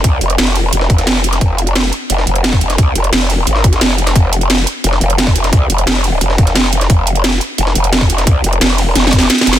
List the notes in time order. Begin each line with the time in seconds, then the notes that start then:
0.04 C2, kick, closed hi-hat
0.21 F1, closed hi-hat
0.30 closed hi-hat
0.38 F1, snare, closed hi-hat
0.47 snare
0.55 snare, closed hi-hat, open hi-hat
0.73 F1, closed hi-hat
0.81 snare
0.90 F1, kick, closed hi-hat
0.98 snare, closed hi-hat
1.07 snare, closed hi-hat
1.16 snare
1.24 closed hi-hat
1.33 snare, closed hi-hat
1.41 F1, kick, closed hi-hat
1.58 closed hi-hat
1.67 closed hi-hat
1.76 snare, closed hi-hat
1.84 snare
1.93 closed hi-hat
2.10 F1, closed hi-hat
2.18 snare
2.27 F1, closed hi-hat
2.36 closed hi-hat
2.44 snare, closed hi-hat
2.53 kick, snare
2.61 closed hi-hat
2.70 snare, closed hi-hat
2.78 C2, kick, closed hi-hat
2.95 F1, closed hi-hat
3.04 closed hi-hat
3.13 F1, snare, closed hi-hat
3.21 snare
3.30 snare, closed hi-hat, open hi-hat
3.47 G#1, closed hi-hat
3.56 snare
3.64 kick, closed hi-hat
3.73 snare, closed hi-hat
3.81 F1, snare, closed hi-hat
3.90 snare
3.98 closed hi-hat
4.07 snare, closed hi-hat
4.16 F1, kick, closed hi-hat
4.33 closed hi-hat
4.41 closed hi-hat
4.50 snare, closed hi-hat
4.58 snare
4.67 closed hi-hat
4.84 F1, closed hi-hat
4.93 snare
5.01 F1, closed hi-hat
5.10 closed hi-hat
5.18 snare, closed hi-hat
5.27 kick, snare
5.36 closed hi-hat
5.44 snare, closed hi-hat
5.53 C2, kick, closed hi-hat
5.70 F1, closed hi-hat
5.78 closed hi-hat
5.87 F1, snare, closed hi-hat
5.96 snare
6.04 snare, closed hi-hat, open hi-hat
6.21 F1, closed hi-hat
6.30 snare
6.38 F1, kick, closed hi-hat
6.47 snare, closed hi-hat
6.55 snare, closed hi-hat
6.64 snare
6.73 closed hi-hat
6.81 snare, closed hi-hat
6.90 F1, kick, closed hi-hat
7.07 closed hi-hat
7.15 closed hi-hat
7.24 snare, closed hi-hat
7.33 snare
7.41 closed hi-hat
7.58 F1, closed hi-hat
7.67 snare
7.75 F1, closed hi-hat
7.84 closed hi-hat
7.93 snare, closed hi-hat
8.01 kick, snare
8.10 closed hi-hat
8.18 snare, closed hi-hat
8.27 C2, kick, closed hi-hat
8.44 F1, closed hi-hat
8.53 closed hi-hat
8.61 F1, snare, closed hi-hat
8.70 snare
8.78 snare, closed hi-hat, open hi-hat
8.95 F1, snare, closed hi-hat
9.04 snare
9.07 snare
9.13 kick, closed hi-hat
9.18 snare, closed hi-hat
9.30 snare, closed hi-hat
9.38 snare, closed hi-hat
9.47 F1, closed hi-hat
9.53 snare
9.56 snare, closed hi-hat